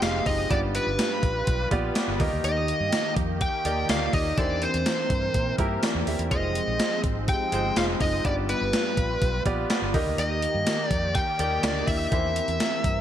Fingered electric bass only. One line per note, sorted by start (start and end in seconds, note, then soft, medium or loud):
0.02 0.20 F1 medium
0.26 0.44 F#1 loud
0.51 0.78 G1 loud
0.87 0.96 G1 medium
1.23 1.41 A#1 medium
1.47 1.66 B1 loud
1.71 1.90 A#1 medium
2.08 2.17 G1 medium
2.20 2.29 D#2 loud
2.32 2.41 D2 medium
2.44 2.71 D#2 loud
2.80 2.89 G2 medium
3.16 3.44 F2 loud
3.65 3.83 D#2 loud
3.89 4.08 D2 loud
4.13 4.32 D#2 medium
4.38 4.65 E2 loud
4.74 4.83 E2 medium
5.10 5.28 G2 medium
5.35 5.53 A#2 loud
5.59 5.77 G2 loud
5.95 6.04 E2 medium
6.07 6.16 D#2 medium
6.19 6.28 E2 medium
6.31 6.58 F1 loud
6.67 6.77 A#1 medium
7.04 7.31 G#1 medium
7.52 7.70 G1 medium
7.76 7.95 F1 medium
8.01 8.19 F#1 loud
8.25 8.52 G1 loud
8.61 8.70 G1 medium
8.97 9.15 A#1 medium
9.22 9.40 B1 loud
9.46 9.64 A#1 medium
9.82 9.91 G1 medium
9.94 10.03 D#2 loud
10.06 10.15 D2 medium
10.18 10.45 D#2 loud
10.54 10.64 G2 medium
10.91 11.18 F2 medium
11.39 11.57 D#2 loud
11.63 11.82 D2 medium
11.88 12.06 D#2 medium
12.12 12.39 E2 loud
12.48 12.57 E2 medium
12.84 13.01 G2 medium